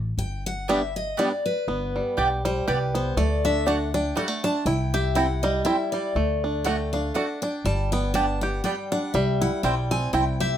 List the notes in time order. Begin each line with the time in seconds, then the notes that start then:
Already playing: A1
0.17 G1 G5
0.46 F#5
0.68 G3 B3 D4 G4 D5 E5 G5
0.96 D#5
1.17 G3 B3 D4 G4 D5 G5
1.46 B4
1.68 G1 B3
1.96 G3
2.17 B1 B3 G4 D5 G5
2.45 G3 C5
2.67 C2 B3 G4 B4 D5 G5
2.95 B3 C5
3.17 D2 A3 D5
3.45 D4 E5
3.66 A3 D4 F#4 D5 F#5
3.94 D4 G5
4.16 G3 A3 F#4 D5 F#5
4.28 A3
4.44 D4 A5
4.66 C2 E4 G5
4.94 G4 E5
5.15 C4 E4 C5 F#5 G5
5.43 G3 D#5
5.65 C4 E4 C5 E5 G5
5.92 G3 D5
6.15 D2 A3
6.44 D4
6.64 A3 F#4 D5 F#5 G5
6.93 D4 F5
7.14 A3 D4 F#4 D5 F#5
7.42 D4 G5
7.65 G1 G3 A5
7.92 B3 G5
8.14 B3 D4 G4 D5 G5 A5
8.41 G4 F#5
8.64 G3 B3 G4 D5 G5
8.92 D4 F#5
9.14 C2 G3 E5
9.41 E4 F#5
9.63 B1 G3 C4 E4 C5 G5
9.91 C4 G#5
10.13 C2 C4 E4 C5 G5
10.40 G4 E5